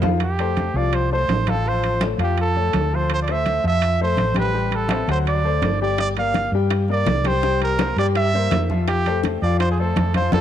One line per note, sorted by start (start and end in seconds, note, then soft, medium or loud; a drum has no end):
0.00 0.69 F2 medium
0.00 0.18 F3 medium
0.00 0.18 F4 medium
0.00 0.18 F5 medium
0.00 low bongo medium
0.00 high conga medium
0.00 low timbale loud
0.20 0.79 G4 medium
0.20 high conga soft
0.20 high timbale medium
0.39 0.69 A3 medium
0.39 0.69 A4 medium
0.39 0.69 C5 medium
0.39 high conga soft
0.39 high timbale medium
0.57 high conga medium
0.57 high timbale medium
0.74 1.25 C2 medium
0.74 1.05 F3 medium
0.74 1.05 F4 medium
0.74 0.96 D5 medium
0.74 1.05 F5 medium
0.93 1.12 C5 medium
0.93 high conga soft
0.93 high timbale medium
1.12 1.41 A3 medium
1.12 1.41 A4 medium
1.12 1.42 C5 medium
1.12 1.51 C5 medium
1.12 high conga soft
1.28 2.13 A1 medium
1.28 high conga medium
1.28 high timbale medium
1.28 low timbale medium
1.47 1.62 F3 medium
1.47 1.63 F4 medium
1.47 1.70 A4 medium
1.47 1.63 F5 medium
1.47 high conga medium
1.47 high timbale medium
1.65 1.95 F3 medium
1.65 1.95 F4 medium
1.65 2.03 C5 medium
1.65 1.95 F5 medium
1.65 high conga soft
1.84 high conga soft
1.84 high timbale medium
2.01 2.16 A3 medium
2.01 2.17 A4 medium
2.01 2.17 C#5 medium
2.01 high conga medium
2.01 high timbale medium
2.18 2.69 F2 medium
2.18 2.49 F3 medium
2.18 2.49 F4 medium
2.18 2.49 F5 medium
2.18 high conga soft
2.18 high timbale medium
2.23 2.38 G4 medium
2.38 2.97 A4 medium
2.38 high conga soft
2.38 high timbale medium
2.56 2.86 A3 medium
2.56 2.86 A4 medium
2.56 2.86 C#5 medium
2.56 high conga soft
2.73 3.58 D2 medium
2.73 high conga medium
2.73 high timbale medium
2.73 low timbale medium
2.92 3.22 F3 medium
2.92 3.22 F4 medium
2.92 3.12 C5 medium
2.92 3.22 F5 medium
3.10 3.22 C5 medium
3.10 high conga soft
3.10 high timbale medium
3.22 3.33 D5 medium
3.28 3.58 A3 medium
3.28 3.58 A4 medium
3.28 3.58 C5 medium
3.28 high conga soft
3.28 high timbale medium
3.32 3.66 E5 loud
3.46 high conga medium
3.46 high timbale medium
3.64 4.14 F2 loud
3.64 3.94 F3 medium
3.64 3.94 F4 medium
3.64 3.94 E5 medium
3.64 4.00 E5 loud
3.82 high conga soft
3.82 high timbale medium
3.99 4.30 A3 medium
3.99 4.30 A4 medium
3.99 4.30 C5 medium
3.99 4.35 C5 loud
3.99 high conga soft
4.17 5.03 A1 medium
4.17 high conga medium
4.17 high timbale medium
4.35 4.51 G3 medium
4.35 4.51 G4 medium
4.35 4.51 G5 medium
4.35 high conga medium
4.35 high timbale medium
4.39 4.77 B4 loud
4.53 4.84 G3 medium
4.53 4.84 G4 medium
4.53 4.84 G5 medium
4.53 high conga soft
4.71 high conga soft
4.71 high timbale medium
4.75 5.10 A4 medium
4.89 5.05 C4 medium
4.89 5.06 C5 medium
4.89 5.06 E5 medium
4.89 high conga medium
4.89 high timbale medium
5.07 5.59 D2 medium
5.07 5.38 F#3 medium
5.07 5.38 F#4 medium
5.07 5.19 C5 medium
5.07 5.38 F#5 medium
5.07 high conga soft
5.07 high timbale medium
5.26 5.78 D5 loud
5.26 high conga soft
5.26 high timbale medium
5.44 5.74 A3 medium
5.44 5.74 A4 medium
5.44 5.75 C5 medium
5.44 high conga soft
5.62 6.47 G1 medium
5.62 high conga medium
5.62 high timbale medium
5.62 low timbale medium
5.82 6.11 G3 medium
5.82 6.11 G4 medium
5.82 5.98 D5 medium
5.82 6.11 G5 medium
5.98 6.08 D5 loud
5.98 high bongo medium
5.98 high conga soft
5.98 high timbale medium
6.17 6.47 A#3 medium
6.17 6.47 A#4 medium
6.17 6.47 D5 medium
6.17 6.52 F5 loud
6.17 high conga soft
6.17 high timbale medium
6.34 high bongo medium
6.34 high conga medium
6.34 high timbale medium
6.52 7.03 G2 medium
6.52 6.83 G3 medium
6.52 6.84 G4 medium
6.52 6.84 G5 medium
6.70 high bongo medium
6.70 high conga soft
6.70 high timbale medium
6.88 7.19 A#3 medium
6.88 7.19 A#4 medium
6.88 7.19 D5 medium
6.88 7.29 D5 loud
6.88 high conga soft
7.06 7.92 C2 medium
7.06 high bongo medium
7.06 low bongo medium
7.06 high conga medium
7.06 high timbale medium
7.06 low timbale medium
7.24 7.40 G3 medium
7.24 7.40 G4 medium
7.24 7.62 C5 loud
7.24 7.41 G5 medium
7.24 high conga medium
7.24 high timbale medium
7.42 7.73 G3 medium
7.42 7.73 G4 medium
7.42 7.74 G5 medium
7.42 high bongo medium
7.42 high conga soft
7.61 7.96 A#4 medium
7.61 high bongo soft
7.61 high conga soft
7.61 high timbale medium
7.79 7.95 A#3 medium
7.79 7.95 A#4 medium
7.79 7.95 C5 medium
7.79 high bongo medium
7.79 high conga loud
7.79 high timbale medium
7.96 8.47 G2 medium
7.96 8.28 G3 medium
7.96 8.28 G4 medium
7.96 8.07 D5 medium
7.96 8.28 G5 medium
7.96 high bongo soft
7.96 high conga soft
7.96 high timbale medium
8.15 8.66 E5 loud
8.15 high bongo medium
8.15 high conga soft
8.15 high timbale medium
8.33 8.64 A#3 medium
8.33 8.64 A#4 medium
8.33 8.64 C5 medium
8.33 high bongo soft
8.33 high conga soft
8.51 9.36 F2 medium
8.51 high bongo medium
8.51 low bongo medium
8.51 high conga medium
8.51 high timbale medium
8.51 low timbale medium
8.70 9.00 F3 medium
8.70 9.00 F4 medium
8.70 9.00 F5 medium
8.70 high conga medium
8.88 9.22 G4 loud
8.88 high bongo medium
8.88 high conga soft
8.88 high timbale medium
9.06 9.36 A3 medium
9.06 9.36 A4 medium
9.06 9.36 C5 medium
9.06 high conga soft
9.06 high timbale medium
9.24 high bongo medium
9.24 high conga medium
9.24 high timbale medium
9.42 9.93 F2 medium
9.42 9.72 F3 medium
9.42 9.73 F4 medium
9.42 9.59 D5 medium
9.42 9.73 F5 medium
9.60 9.70 C5 loud
9.60 high bongo medium
9.60 high conga soft
9.60 high timbale medium
9.71 9.81 G#4 medium
9.78 10.09 A3 medium
9.78 10.15 A4 medium
9.78 10.09 A4 medium
9.78 10.09 C5 medium
9.78 high conga soft
9.96 10.30 F2 medium
9.96 high bongo medium
9.96 low bongo medium
9.96 high conga medium
9.96 high timbale medium
10.14 10.30 F3 medium
10.14 10.30 F4 medium
10.14 10.32 C5 medium
10.14 10.30 F5 medium
10.14 high conga medium
10.14 high timbale medium
10.32 10.41 F2 medium
10.32 10.41 D4 medium
10.32 10.41 F4 loud
10.32 10.41 A4 medium
10.32 high bongo loud
10.32 high conga loud
10.32 high timbale medium